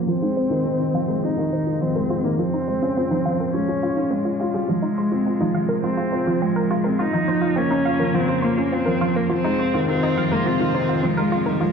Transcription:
0.00 4.66 F2 medium
0.00 0.07 F3 medium
0.00 0.10 A#3 medium
0.00 0.10 C#4 medium
0.06 2.36 C3 medium
0.06 0.16 F3 medium
0.06 2.36 G#3 medium
0.06 1.25 C4 loud
0.06 9.27 F4 medium
0.06 0.12 F4 medium
0.21 0.36 G#3 medium
0.21 0.32 D#4 medium
0.36 0.45 C4 medium
0.36 0.46 C5 medium
0.50 0.64 D#3 medium
0.50 0.60 F4 medium
0.65 0.74 D#3 medium
0.65 0.69 C4 medium
0.80 0.86 D#4 medium
0.93 1.02 F3 medium
0.93 0.98 F5 medium
1.08 1.22 G#3 medium
1.08 1.13 A#4 medium
1.22 1.31 C4 medium
1.22 1.83 D#4 medium
1.22 1.28 F4 medium
1.37 1.50 D#3 medium
1.37 1.44 F4 medium
1.52 1.60 D#3 medium
1.52 1.62 C5 medium
1.67 1.76 F4 medium
1.81 1.89 F3 medium
1.81 2.26 C4 medium
1.81 1.85 C4 medium
1.95 2.09 G#3 medium
1.95 2.02 A#4 medium
2.10 2.18 C4 medium
2.10 2.14 F4 loud
2.24 2.38 D#3 medium
2.24 2.40 A#3 medium
2.24 2.28 A#4 medium
2.38 4.68 C#3 medium
2.38 2.47 F3 medium
2.38 4.67 G#3 medium
2.38 3.53 C4 medium
2.38 2.43 F4 medium
2.54 2.63 D#4 medium
2.67 2.76 G#3 medium
2.67 2.77 C5 medium
2.81 2.95 C#4 medium
2.81 2.92 F4 medium
2.96 3.01 C4 medium
2.96 3.05 F4 medium
3.11 3.24 F3 medium
3.11 3.17 D#4 medium
3.25 3.34 F3 medium
3.25 3.29 F5 medium
3.40 3.44 A#4 medium
3.54 3.63 G#3 medium
3.54 4.13 C#4 medium
3.54 3.58 F4 medium
3.69 3.82 C#4 medium
3.69 3.75 F4 medium
3.83 3.96 F4 medium
3.83 3.87 F4 medium
3.97 4.03 D#4 medium
3.97 4.11 C#5 medium
4.11 4.55 G#3 medium
4.11 4.18 C4 medium
4.11 4.20 C#4 medium
4.25 4.32 F4 medium
4.40 4.53 F4 medium
4.40 4.44 G4 medium
4.54 4.69 G3 medium
4.54 4.69 F4 medium
4.54 4.64 G#4 medium
4.68 6.98 C3 medium
4.68 4.78 F3 medium
4.68 5.82 G#3 medium
4.68 6.98 G#3 medium
4.68 4.73 F4 medium
4.82 4.93 D#4 medium
4.98 5.07 G#3 medium
4.98 5.07 C5 medium
5.12 5.26 C4 medium
5.12 5.22 F4 medium
5.26 5.31 C4 medium
5.26 5.35 F4 medium
5.41 5.54 F3 medium
5.41 5.47 D#4 medium
5.55 5.64 F3 medium
5.55 5.59 F5 medium
5.69 5.73 A#4 medium
5.83 5.93 G#3 medium
5.83 6.43 C4 medium
5.83 5.88 F4 medium
5.97 6.13 C4 medium
5.97 6.05 F4 medium
6.12 6.21 F4 medium
6.12 6.22 C5 medium
6.27 6.40 F3 medium
6.27 6.37 F4 medium
6.42 6.50 F3 medium
6.42 7.01 G#3 medium
6.42 6.46 C4 medium
6.56 6.63 A#4 medium
6.71 6.80 G#3 medium
6.71 6.75 F4 medium
6.84 7.00 C4 medium
6.84 6.89 A#4 medium
6.99 11.72 F2 medium
6.99 9.29 C#3 medium
6.99 9.29 A#3 medium
6.99 7.59 D#4 medium
6.99 7.03 F4 medium
6.99 7.08 F4 medium
7.13 7.27 F3 medium
7.13 7.23 D#4 medium
7.28 7.37 F3 medium
7.28 7.38 C5 medium
7.41 7.52 F4 medium
7.56 7.66 A#3 medium
7.56 7.61 C4 medium
7.56 8.17 C#4 medium
7.71 7.85 C#4 medium
7.71 7.78 D#4 medium
7.85 7.94 F4 medium
7.85 7.90 F5 medium
8.00 8.13 F3 medium
8.00 8.04 A#4 medium
8.14 8.23 F3 medium
8.14 8.45 C4 medium
8.14 8.19 F4 medium
8.29 8.36 F4 medium
8.42 8.75 A#3 medium
8.42 8.52 A#3 medium
8.42 8.53 C5 medium
8.58 8.72 C#4 medium
8.58 8.68 F4 medium
8.72 8.77 C4 medium
8.72 9.18 C4 medium
8.72 8.81 F4 medium
8.86 9.00 F3 medium
8.86 8.93 A#4 medium
9.01 9.10 F3 medium
9.01 9.06 F4 loud
9.16 9.33 A#3 medium
9.16 9.20 A#4 medium
9.30 11.60 C3 medium
9.30 9.39 F3 medium
9.30 11.72 F3 medium
9.30 9.88 C4 medium
9.30 9.34 F4 medium
9.30 11.60 F4 medium
9.44 9.59 G#3 medium
9.44 9.54 D#4 medium
9.59 9.68 C4 medium
9.59 9.69 C5 medium
9.74 9.87 D#3 medium
9.74 9.84 F4 medium
9.88 9.97 D#3 medium
9.88 9.92 C4 medium
9.88 10.34 C4 medium
10.03 10.09 D#4 loud
10.17 10.25 F3 medium
10.17 10.21 F5 medium
10.31 10.45 G#3 medium
10.31 10.48 A#3 medium
10.31 10.36 A#4 medium
10.45 10.54 C4 medium
10.45 11.06 C4 medium
10.45 10.50 F4 medium
10.60 10.73 D#3 medium
10.60 10.67 F4 medium
10.75 10.83 D#3 medium
10.75 10.84 C5 medium
10.89 10.99 F4 medium
11.03 11.12 F3 medium
11.03 11.50 G#3 medium
11.03 11.07 C4 medium
11.17 11.32 G#3 medium
11.17 11.24 A#4 medium
11.32 11.41 C4 medium
11.32 11.36 F4 medium
11.46 11.61 D#3 medium
11.46 11.64 G3 medium
11.46 11.50 A#4 medium
11.61 11.72 C#3 medium
11.61 11.70 F3 medium
11.61 11.72 G#3 medium
11.61 11.65 F4 medium
11.61 11.72 F4 medium

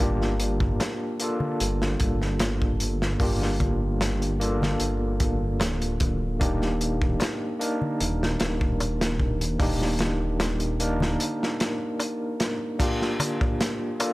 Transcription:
0.00 0.76 G1 medium
0.00 1.15 A#3 medium
0.00 1.16 D4 medium
0.00 1.17 F4 medium
0.00 1.17 G4 medium
0.00 kick loud
0.00 closed hi-hat medium
0.22 snare soft
0.40 closed hi-hat medium
0.60 kick medium
0.80 snare loud
0.80 closed hi-hat medium
0.80 darbuka tek medium
1.20 3.16 A#3 medium
1.20 3.16 D4 medium
1.20 3.17 F4 medium
1.20 closed hi-hat medium
1.24 3.17 A4 medium
1.40 darbuka dum medium
1.60 1.96 G1 loud
1.60 closed hi-hat medium
1.82 snare medium
2.00 3.17 G1 medium
2.00 kick medium
2.00 closed hi-hat medium
2.22 snare soft
2.39 snare loud
2.39 closed hi-hat medium
2.39 darbuka tek medium
2.62 kick medium
2.80 closed hi-hat medium
3.02 snare medium
3.20 4.76 G1 medium
3.20 4.35 A#3 medium
3.20 4.36 D4 medium
3.20 4.37 F4 medium
3.20 4.37 G4 medium
3.20 kick medium
3.20 open hi-hat medium
3.42 snare soft
3.60 kick loud
3.60 closed hi-hat medium
3.60 darbuka dum medium
4.01 snare loud
4.01 closed hi-hat medium
4.01 darbuka tek medium
4.22 closed hi-hat soft
4.40 6.36 A#3 medium
4.40 6.36 D4 medium
4.40 6.37 F4 medium
4.40 6.37 A4 medium
4.40 closed hi-hat medium
4.62 snare medium
4.62 darbuka dum medium
4.80 5.62 G1 medium
4.80 closed hi-hat medium
5.20 kick loud
5.20 closed hi-hat medium
5.60 6.42 D1 medium
5.60 snare loud
5.60 closed hi-hat medium
5.60 darbuka tek medium
5.82 closed hi-hat soft
6.00 kick loud
6.00 closed hi-hat medium
6.39 7.17 D#1 medium
6.39 7.55 A#3 medium
6.39 7.56 D4 medium
6.39 7.56 D#4 medium
6.39 7.57 G4 medium
6.39 kick loud
6.39 closed hi-hat medium
6.62 snare soft
6.81 closed hi-hat medium
7.02 kick medium
7.20 snare loud
7.20 closed hi-hat medium
7.20 darbuka tek medium
7.59 9.55 A#3 medium
7.59 9.56 D4 medium
7.59 9.56 D#4 medium
7.59 9.57 A#4 medium
7.59 closed hi-hat medium
7.82 darbuka dum medium
8.00 8.36 D#1 loud
8.00 closed hi-hat medium
8.23 snare medium
8.40 9.57 D#1 medium
8.40 snare loud
8.40 closed hi-hat medium
8.61 kick medium
8.80 closed hi-hat medium
8.80 darbuka tek medium
9.01 snare medium
9.01 closed hi-hat medium
9.20 kick medium
9.41 closed hi-hat medium
9.59 11.17 D#1 medium
9.59 10.75 A#3 medium
9.59 10.76 D4 medium
9.59 10.76 D#4 medium
9.59 10.77 G4 medium
9.59 kick loud
9.59 open hi-hat medium
9.82 snare soft
9.99 snare loud
9.99 closed hi-hat medium
9.99 darbuka dum medium
10.40 snare loud
10.40 closed hi-hat medium
10.40 darbuka tek medium
10.60 closed hi-hat soft
10.80 12.76 A#3 medium
10.80 12.76 D4 medium
10.80 12.76 D#4 medium
10.80 12.77 A#4 medium
10.80 closed hi-hat medium
11.00 snare medium
11.00 darbuka dum medium
11.20 closed hi-hat medium
11.43 snare soft
11.60 snare loud
11.60 closed hi-hat medium
12.00 closed hi-hat medium
12.00 darbuka tek medium
12.40 snare medium
12.40 closed hi-hat medium
12.79 13.95 A#3 medium
12.79 13.96 D4 medium
12.79 13.96 F4 medium
12.79 13.97 G4 medium
12.79 kick loud
12.79 closed hi-hat medium
12.79 crash medium
12.79 darbuka tek soft
13.02 snare soft
13.20 closed hi-hat medium
13.20 darbuka tek medium
13.20 darbuka dum medium
13.41 kick loud
13.41 darbuka tek medium
13.61 snare loud
13.61 closed hi-hat loud
13.61 darbuka tek soft
13.99 14.13 A#3 medium
13.99 14.13 D4 medium
13.99 14.13 F4 medium
13.99 14.13 A4 medium
13.99 closed hi-hat medium
13.99 darbuka tek medium

